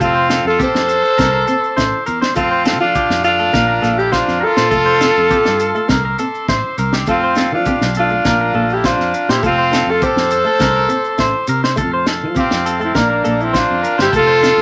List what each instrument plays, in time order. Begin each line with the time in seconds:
0.00 fingered electric bass F1, nylon-string guitar A3, trumpet C4, alto saxophone F4, clean electric guitar A4, transistor combo organ F5 A5 C6, kick, maracas
0.15 clean electric guitar C5
0.30 nylon-string guitar C4, clean electric guitar A4, snare, maracas
0.45 fingered electric bass F2, trumpet F4, alto saxophone A4
0.59 nylon-string guitar C4, clean electric guitar G4, alto saxophone C5, kick, maracas
0.63 trumpet A4
0.74 fingered electric bass F2, snare
0.88 clean electric guitar A4, maracas
1.03 clean electric guitar A4, maracas
1.18 fingered electric bass C2, nylon-string guitar C4, clean electric guitar A#4, transistor combo organ E5 D6, kick, snare, maracas
1.32 clean electric guitar A#4
1.47 nylon-string guitar C4, clean electric guitar A4, maracas
1.64 maracas
1.77 fingered electric bass A1, nylon-string guitar E4, clean electric guitar C5, kick, snare, maracas
2.06 fingered electric bass E2, clean electric guitar A#4, maracas
2.22 clean electric guitar C5, snare
2.34 fingered electric bass F2, nylon-string guitar A3, trumpet C4, alto saxophone F4, clean electric guitar A4, transistor combo organ F5 A5, kick, maracas
2.51 clean electric guitar C5
2.65 nylon-string guitar C4, clean electric guitar A4, snare, maracas
2.79 fingered electric bass F3, trumpet D4, alto saxophone F4
2.95 clean electric guitar G4, kick, maracas
3.10 fingered electric bass F2, snare
3.24 trumpet D4, alto saxophone F4, clean electric guitar A4, maracas
3.39 nylon-string guitar A3, clean electric guitar A4, maracas
3.53 fingered electric bass A#1, nylon-string guitar A#3, clean electric guitar A#4, transistor combo organ A#5 D6, kick, snare, maracas
3.69 clean electric guitar A#4
3.82 fingered electric bass A#1, nylon-string guitar A#3, clean electric guitar A4, snare, maracas
3.98 trumpet E4, alto saxophone G4, maracas
4.12 nylon-string guitar D4, trumpet D4, alto saxophone F4, clean electric guitar C5, kick, snare, maracas
4.28 fingered electric bass F2, snare
4.41 alto saxophone A4, clean electric guitar A#4
4.45 trumpet F4
4.57 fingered electric bass A#2, clean electric guitar C5, snare
4.71 fingered electric bass F1, nylon-string guitar A3, clean electric guitar A4, transistor combo organ A5 C6, kick, maracas
4.86 clean electric guitar C5
5.01 nylon-string guitar C4, clean electric guitar A4, snare, maracas
5.16 fingered electric bass F2, maracas
5.30 nylon-string guitar C4, clean electric guitar G4, kick, maracas
5.45 fingered electric bass G2, snare
5.60 clean electric guitar A4, maracas
5.75 nylon-string guitar A3, clean electric guitar A4, maracas
5.88 fingered electric bass C2, nylon-string guitar C4, clean electric guitar A#4, transistor combo organ E5 D6, kick, snare, maracas
6.05 clean electric guitar A#4
6.19 nylon-string guitar C4, clean electric guitar A4, maracas
6.35 maracas
6.48 fingered electric bass A1, nylon-string guitar E4, clean electric guitar C5, kick, snare, maracas
6.78 fingered electric bass C2, clean electric guitar A#4, maracas
6.93 clean electric guitar G4, snare
7.06 fingered electric bass F2, nylon-string guitar A3, trumpet C4, alto saxophone F4, clean electric guitar A4, transistor combo organ F5 A5, kick, maracas
7.23 clean electric guitar C5
7.35 nylon-string guitar C4, clean electric guitar A4, snare, maracas
7.52 fingered electric bass F3, trumpet D4, alto saxophone F4
7.65 nylon-string guitar C4, clean electric guitar G4, kick, maracas
7.81 fingered electric bass B1, snare
7.95 clean electric guitar A4, maracas
7.99 trumpet D4, alto saxophone F4
8.10 nylon-string guitar A3, muted clean electric guitar stroke, maracas
8.25 fingered electric bass A#1, nylon-string guitar A#3, clean electric guitar A#4, transistor combo organ A#5 D6, kick, snare, maracas
8.41 clean electric guitar A#4
8.54 fingered electric bass A#1, nylon-string guitar A#3, clean electric guitar A4
8.70 trumpet E4, alto saxophone G4, maracas
8.84 nylon-string guitar D4, alto saxophone F4, clean electric guitar C5, kick, snare, maracas
8.88 trumpet D4
8.99 fingered electric bass F2, snare
9.14 maracas
9.29 fingered electric bass A#2, trumpet E4, alto saxophone G4, clean electric guitar C5, snare
9.42 fingered electric bass F1, nylon-string guitar A3, trumpet C4, alto saxophone F4, clean electric guitar A4, transistor combo organ F5 A5 C6, kick, maracas
9.58 clean electric guitar C5
9.72 nylon-string guitar C4, clean electric guitar A4, snare, maracas
9.87 fingered electric bass F2, alto saxophone A4
9.91 trumpet F4
10.00 nylon-string guitar C4, clean electric guitar G4, alto saxophone C5, kick, maracas
10.06 trumpet A4
10.16 fingered electric bass F2, snare
10.30 clean electric guitar A4, maracas
10.44 nylon-string guitar A3, clean electric guitar A4, maracas
10.59 fingered electric bass C2, nylon-string guitar C4, clean electric guitar A#4, transistor combo organ E5 C6 D6, kick, snare, maracas
10.76 clean electric guitar A#4
10.89 nylon-string guitar C4, muted clean electric guitar stroke, maracas
11.04 maracas
11.18 fingered electric bass A1, nylon-string guitar E4, clean electric guitar C5, kick, snare, maracas
11.47 fingered electric bass C3, clean electric guitar A#4, maracas
11.64 clean electric guitar C5, snare
11.76 fingered electric bass F2, nylon-string guitar A3, clean electric guitar A4, transistor combo organ A5, kick, maracas
11.80 transistor combo organ F5
11.93 clean electric guitar C5
12.06 clean electric guitar A4, muted nylon-string guitar stroke, snare, maracas
12.23 fingered electric bass F3
12.35 nylon-string guitar C4, alto saxophone F4, clean electric guitar G4, kick, maracas
12.39 trumpet C4
12.51 fingered electric bass F2, snare
12.66 clean electric guitar A4, maracas
12.80 nylon-string guitar A3, clean electric guitar A4, maracas
12.84 trumpet C4, alto saxophone E4
12.94 fingered electric bass A#1, nylon-string guitar A#3, alto saxophone D4, clean electric guitar A#4, transistor combo organ A#5 D6, kick, snare, maracas
12.98 trumpet A#3
13.10 clean electric guitar A#4
13.24 fingered electric bass A#1, nylon-string guitar A#3, clean electric guitar A4, maracas
13.41 trumpet C4, alto saxophone E4, maracas
13.53 nylon-string guitar D4, alto saxophone F4, clean electric guitar C5, kick, snare, maracas
13.59 trumpet D4
13.71 fingered electric bass F2
13.83 clean electric guitar A#4, maracas
13.98 fingered electric bass G1, alto saxophone G4, clean electric guitar C5, snare
14.03 trumpet E4
14.12 fingered electric bass F1, nylon-string guitar A3, clean electric guitar A4, alto saxophone A4, transistor combo organ A5 C6, kick, maracas
14.17 trumpet F4
14.27 clean electric guitar C5
14.42 nylon-string guitar C4, clean electric guitar A4, snare, maracas
14.57 fingered electric bass F2